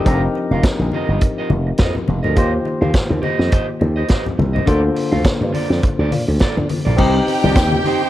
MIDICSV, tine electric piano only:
0, 0, Header, 1, 2, 480
1, 0, Start_track
1, 0, Tempo, 576369
1, 53, Time_signature, 4, 2, 24, 8
1, 6742, End_track
2, 0, Start_track
2, 0, Title_t, "Tine electric piano"
2, 0, Program_c, 0, 4
2, 0, Control_c, 0, 64, 127
2, 0, Note_on_c, 0, 62, 51
2, 41, Note_on_c, 0, 53, 61
2, 48, Note_on_c, 0, 60, 59
2, 55, Note_on_c, 0, 63, 64
2, 62, Note_on_c, 0, 67, 55
2, 65, Control_c, 0, 64, 0
2, 67, Note_on_c, 0, 69, 57
2, 121, Note_off_c, 0, 69, 0
2, 121, Note_on_c, 0, 70, 71
2, 179, Note_off_c, 0, 62, 0
2, 207, Control_c, 0, 64, 127
2, 1933, Note_off_c, 0, 53, 0
2, 1936, Note_off_c, 0, 60, 0
2, 1940, Note_off_c, 0, 63, 0
2, 1943, Note_off_c, 0, 67, 0
2, 1959, Note_on_c, 0, 51, 66
2, 1965, Note_on_c, 0, 58, 65
2, 1973, Note_off_c, 0, 70, 0
2, 1973, Note_on_c, 0, 65, 64
2, 1977, Note_on_c, 0, 67, 56
2, 1983, Control_c, 0, 64, 0
2, 1986, Note_on_c, 0, 72, 74
2, 2119, Control_c, 0, 64, 127
2, 3855, Note_off_c, 0, 51, 0
2, 3858, Note_off_c, 0, 58, 0
2, 3862, Note_off_c, 0, 65, 0
2, 3864, Note_off_c, 0, 67, 0
2, 3868, Note_off_c, 0, 72, 0
2, 3881, Note_on_c, 0, 50, 75
2, 3887, Note_on_c, 0, 58, 66
2, 3895, Note_on_c, 0, 65, 63
2, 3900, Note_on_c, 0, 69, 58
2, 3905, Control_c, 0, 64, 0
2, 3905, Note_on_c, 0, 72, 71
2, 4063, Control_c, 0, 64, 127
2, 5776, Note_off_c, 0, 50, 0
2, 5779, Note_off_c, 0, 58, 0
2, 5783, Note_off_c, 0, 65, 0
2, 5786, Note_off_c, 0, 69, 0
2, 5788, Note_off_c, 0, 72, 0
2, 5803, Note_on_c, 0, 60, 73
2, 5815, Note_on_c, 0, 63, 76
2, 5826, Note_on_c, 0, 67, 81
2, 5827, Control_c, 0, 64, 0
2, 5995, Control_c, 0, 64, 127
2, 6742, Note_off_c, 0, 60, 0
2, 6742, Note_off_c, 0, 63, 0
2, 6742, Note_off_c, 0, 67, 0
2, 6742, End_track
0, 0, End_of_file